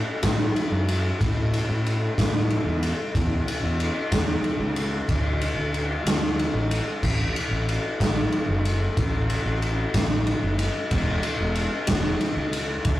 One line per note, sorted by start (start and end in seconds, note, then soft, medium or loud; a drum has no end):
0.23 0.49 A2 medium
0.23 kick medium
0.23 snare loud
0.23 ride loud
0.56 ride medium
0.71 1.10 F#2 medium
0.89 ride medium
1.21 1.59 A2 loud
1.21 kick loud
1.21 ride medium
1.54 ride medium
1.69 2.08 A2 medium
1.86 ride medium
2.18 2.56 A2 medium
2.18 kick medium
2.18 snare loud
2.18 ride loud
2.50 ride medium
2.66 2.92 E2 medium
2.83 ride medium
3.15 3.40 E2 loud
3.15 kick loud
3.15 ride medium
3.48 ride medium
3.63 3.89 E2 loud
3.80 ride medium
4.11 4.37 E2 medium
4.11 kick medium
4.11 snare loud
4.11 ride loud
4.44 ride medium
4.60 4.98 C#2 medium
4.76 ride medium
5.08 5.47 D2 medium
5.08 kick loud
5.08 ride medium
5.41 ride medium
5.56 5.95 D2 medium
5.74 ride medium
6.06 6.44 D2 medium
6.06 snare loud
6.06 ride loud
6.39 ride medium
6.53 6.79 A1 medium
6.71 ride medium
7.03 7.28 A1 loud
7.03 kick loud
7.03 crash loud
7.36 ride medium
7.51 7.77 A1 loud
7.69 ride medium
8.00 8.26 A1 medium
8.00 kick medium
8.00 snare loud
8.00 ride loud
8.32 ride medium
8.48 8.87 F#1 medium
8.65 ride medium
8.97 9.35 A1 loud
8.97 kick loud
8.97 ride medium
9.30 ride medium
9.46 9.84 A1 loud
9.62 ride medium
9.94 10.32 A1 loud
9.94 kick medium
9.94 snare loud
9.94 ride loud
10.27 ride medium
10.42 10.68 F#1 medium
10.59 ride medium
10.91 11.17 E1 loud
10.91 kick loud
10.91 ride loud
11.23 ride medium
11.40 11.66 E1 loud
11.55 ride medium
11.87 12.14 E1 loud
11.87 kick medium
11.87 snare loud
11.87 ride loud
12.21 ride medium
12.37 12.75 C#2 medium
12.53 ride medium
12.85 13.00 D2 loud
12.85 kick loud
12.85 ride loud